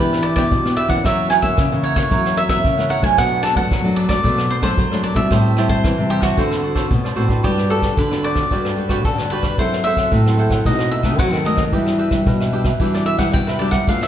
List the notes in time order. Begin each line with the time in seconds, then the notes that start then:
Already playing: B4
0.00 E3 B3 D4 E4 G4 B4 D5
0.13 cross-stick
0.23 E4 G4 B4 D5, closed hi-hat
0.36 B3 D4 E4 G4 B4 D5, kick, cross-stick
0.51 B2, kick, closed hi-hat
0.65 B3 D4 G4 B4 D5, cross-stick
0.77 E4 G4 B4 D5 E5, closed hi-hat
0.89 E3 A#3 C#4 G4 B4 D5 F#5, kick
1.03 F#2 F#3 E4 A#4 C#5 E5 F#5, kick, cross-stick, closed hi-hat
1.30 E4 A#4 C#5 F#5 G#5, cross-stick, closed hi-hat
1.42 E3 A#3 C#4 A#4 C#5 E5 F#5, kick
1.57 C#3, kick, cross-stick, closed hi-hat
1.72 C#3 E3 A#3 C#4 A#4 C#5 F#5, closed hi-hat
1.83 E4 A#4 C#5 F#5, closed hi-hat
1.95 E3 A#3 C#4 A#4 C#5 F#5, kick, cross-stick
2.10 F#2 E3 F#3 A#3 C#4 E4 A#4 C#5 F#5, kick, closed hi-hat
2.25 cross-stick
2.37 E4 A#4 C#5 E5 F#5, closed hi-hat
2.48 E3 A#3 C#4 E4 A#4 C#5 E5 F#5, kick, cross-stick
2.64 C#3, kick, closed hi-hat
2.77 E3 A#3 C#4 A#4 C#5 F#5, cross-stick
2.89 E4 A#4 C#5 F#5, closed hi-hat
3.01 C3 F#3 A3 D4 A#4 C#5 F#5 G#5, kick
3.17 B2 D4 A4 B4 D5 F#5, kick, cross-stick, closed hi-hat
3.43 D4 A4 B4 D5 A5, cross-stick, closed hi-hat
3.55 F#3 A3 D4 A4 B4 D5 F#5, kick
3.70 F#2 F#3, kick, cross-stick, closed hi-hat
3.84 F#3 A3 D4 A4 B4 D5, closed hi-hat
3.96 D4 A4 B4 D5, closed hi-hat
4.08 F#3 A3 D4 A4 B4 D5, kick, cross-stick
4.23 B2 F#3 A3 D4 A4 B4 D5, kick, closed hi-hat
4.38 cross-stick
4.50 D4 A4 B4 C5 D5, closed hi-hat
4.62 F#3 A3 D4 A4 B4 C5 D5, kick, cross-stick, closed hi-hat
4.77 F#2 F#3, kick, closed hi-hat
4.91 F#3 A3 D4 A4 B4 D5, cross-stick
5.03 D4 A4 B4 D5, closed hi-hat
5.14 B2 G3 C4 E4 A4 B4 D5 E5, kick
5.31 A2 G4 C5 E5 A5, kick, cross-stick, closed hi-hat
5.57 G3 C4 E4 G4 C5 E5 A5, cross-stick, closed hi-hat
5.69 C5 E5 A5, kick
5.84 E3, kick, cross-stick, closed hi-hat
5.98 C3 G3 C4 E4 C5 E5 A5, closed hi-hat
6.10 G4 C5 E5 A5, closed hi-hat
6.22 F#4 C5 E5 A5, kick, cross-stick
6.37 D3 C4 F#4 A4 B4 C5 D5, kick, closed hi-hat
6.51 cross-stick
6.63 F#4 A4 C5 D5, closed hi-hat
6.75 C4 F#4 A4 B4 C5 D5, kick, cross-stick
6.90 A2 B2, kick, closed hi-hat
7.04 C4 F#4 A4 B4 C5 D5, cross-stick
7.16 A2 C4 F#4 A4 B4 C5 D5, closed hi-hat
7.28 D4 F#4 A4 B4 C5 D5, kick
7.43 G2 G3 F#4 G4 B4 D5, kick, closed hi-hat
7.58 cross-stick, closed hi-hat
7.70 D4 F#4 G4 A4 B4 D5, closed hi-hat
7.82 G4 B4 D5, kick, cross-stick, closed hi-hat
7.97 D3 B4, kick, closed hi-hat
8.11 D4 F#4 G4 B4 D5, cross-stick
8.23 F#4 G4 B4 D5, closed hi-hat
8.35 G4 B4 D5, kick, cross-stick
8.51 G2 G3 D4 F#4 G4 B4 D5, kick, closed hi-hat
8.65 cross-stick
8.76 D4 F#4 G4 B4 D5, closed hi-hat
8.89 D4 F#4 G4 B4 D5, kick, cross-stick
9.04 D3 A4, kick, closed hi-hat
9.18 G2 G4 B4 D5, cross-stick, closed hi-hat
9.30 D4 F#4 G4 B4 D5, closed hi-hat
9.43 G4 B4 D5, kick, cross-stick, closed hi-hat
9.58 F#2 F#3 C4 E4 A4 C5 F#5, kick, closed hi-hat
9.72 cross-stick
9.84 C4 E4 A4 C5 E5 F#5, closed hi-hat
9.97 A4 C5 F#5, kick, cross-stick
10.12 A2 F#3, kick, closed hi-hat
10.26 C4 E4 A4 C5 F#5, cross-stick
10.38 E4 A4 C5 F#5, closed hi-hat
10.50 A4 C5 F#5, kick, cross-stick, closed hi-hat
10.65 B2 A3 C4 D#4 A4 B4 D#5, kick, closed hi-hat
10.79 cross-stick, closed hi-hat
10.91 D#4 A4 B4 D#5 E5, closed hi-hat
11.03 A3 C4 D#4 A4 B4 D#5, kick, cross-stick
11.18 F#3 F#5, kick, closed hi-hat
11.32 D#3 A4 B4 D#5, cross-stick
11.44 A3 C4 D#4 A4 B4 D#5, closed hi-hat
11.57 A4 B4 D#5, kick, cross-stick, closed hi-hat
11.72 E3 G3 D4 F#4 G4 B4 E5, kick, closed hi-hat
11.86 cross-stick, closed hi-hat
11.98 D4 G4 B4 E5, closed hi-hat
12.11 G3 D4 F#4 G4 B4 E5, kick, cross-stick, closed hi-hat
12.26 B2, kick, closed hi-hat
12.40 G4 B4 E5, cross-stick
12.52 G3 D4 F#4 G4 B4 E5, closed hi-hat
12.64 G4 B4 E5, kick, cross-stick
12.79 E3 G3 D4 F#4 G4 B4 E5, kick, closed hi-hat
12.94 D5, cross-stick
13.06 D4 G4 B4 E5, closed hi-hat
13.18 G3 D4 F#4 G4 B4 E5 F#5, kick, cross-stick
13.33 B2 G5, kick, closed hi-hat
13.47 C3 G4 B4 E5, cross-stick, closed hi-hat
13.59 G3 D4 F#4 G4 B4 D5 E5, closed hi-hat
13.71 G4 B4 E5 F#5, kick, cross-stick, closed hi-hat
13.87 B2 A3 D4 F4 A4 B4 F5, kick, closed hi-hat
14.01 E5, cross-stick